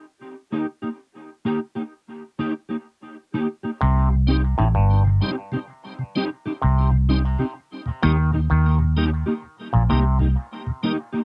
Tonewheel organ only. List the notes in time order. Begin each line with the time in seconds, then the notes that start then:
4.10 C3
4.27 G3 C4 D#4
5.05 C3
5.22 G3 C4 D#4
5.52 C3
5.99 C3
6.15 G3 C4 D#4
6.92 C3
7.09 G3 C4 D#4
7.39 C3
7.86 D#2 A#2
8.03 G3 A#3 D#4
8.32 D#2 A#2
8.79 D#2 A#2
8.97 G3 A#3 D#4
9.73 D#2 A#2
9.90 G3 A#3 D#4
10.19 D#2 A#2
10.66 D#2 A#2
10.83 G3 A#3 D#4